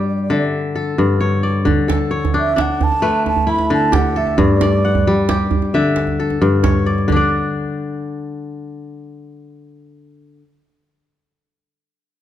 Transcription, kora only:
0.00 0.97 G2 medium
0.00 0.35 G3 medium
0.00 1.25 G4 medium
0.00 0.26 D5 medium
0.00 0.35 F#5 medium
0.30 1.64 D3 medium
0.30 1.33 E5 medium
0.76 1.88 A4 medium
0.98 1.71 G2 medium
1.20 2.10 C#5 medium
1.43 2.17 D5 medium
1.65 3.69 D3 medium
1.88 3.20 A4 medium
2.11 3.25 C#5 medium
2.34 2.56 D4 medium
2.56 4.24 D4 medium
3.02 5.02 A3 medium
3.02 4.25 B4 medium
3.47 5.03 E4 medium
3.70 4.43 D3 medium
3.92 4.91 G4 medium
4.16 5.48 A4 medium
4.38 6.40 G2 medium
4.62 5.73 D5 medium
4.85 5.81 F#5 medium
5.07 5.79 G3 medium
5.29 6.70 G4 medium
5.74 7.07 D3 medium
5.74 6.77 E5 medium
6.20 7.51 A4 medium
6.42 7.15 G2 medium
6.63 7.78 C#5 medium
6.86 7.16 D5 medium
7.08 10.41 D3 medium
7.12 10.45 D4 medium
7.12 10.49 D5 medium

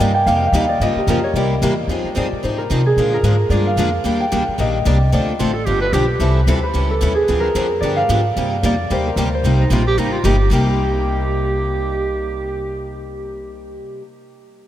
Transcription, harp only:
0.00 1.08 A#4 medium
0.00 0.61 D5 medium
0.00 0.26 F5 medium
0.00 0.14 G5 medium
0.14 0.36 G5 loud
0.26 0.46 F5 medium
0.37 1.92 G5 medium
0.47 2.13 F5 medium
0.55 0.75 D#5 medium
0.69 0.88 D5 medium
0.82 1.43 D#5 loud
0.98 2.92 G4 medium
1.09 2.58 A#4 medium
1.24 1.43 C#5 medium
1.37 2.17 D5 medium
2.17 3.50 D5 medium
2.44 2.50 C5 medium
2.58 3.14 A#4 medium
2.86 4.26 G#4 medium
3.14 5.26 A#4 medium
3.50 4.65 D5 medium
3.67 5.33 F5 medium
4.20 5.76 G5 loud
4.59 4.93 D#5 medium
4.87 5.13 D5 medium
5.14 6.99 D5 medium
6.49 6.69 C5 medium
6.63 7.46 B4 medium
6.90 7.21 A4 medium
7.15 9.42 G#4 medium
7.40 9.07 A#4 medium
7.81 8.65 D5 medium
7.96 9.63 F5 medium
8.65 10.50 D5 loud
8.92 9.34 C5 medium
9.08 11.20 A#4 medium
9.35 11.32 C5 medium

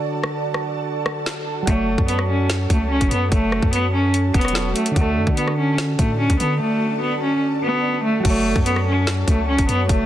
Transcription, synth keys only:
0.00 1.61 D3 medium
0.00 1.63 D4 medium
0.00 1.64 F#4 medium
0.00 1.66 A4 medium
1.62 4.49 F#3 medium
1.62 4.50 F#4 medium
1.69 4.52 A4 medium
1.69 4.54 C#5 medium
4.53 4.95 F#3 medium
4.53 4.96 F#4 soft
4.53 4.97 A4 soft
4.58 4.97 C#5 medium
4.91 8.18 D3 medium
4.91 8.20 D4 medium
4.98 8.22 F#4 medium
4.98 8.23 A4 medium
8.20 10.06 F#3 medium
8.20 10.06 F#4 medium
8.27 10.06 A4 medium
8.27 10.06 C#5 medium

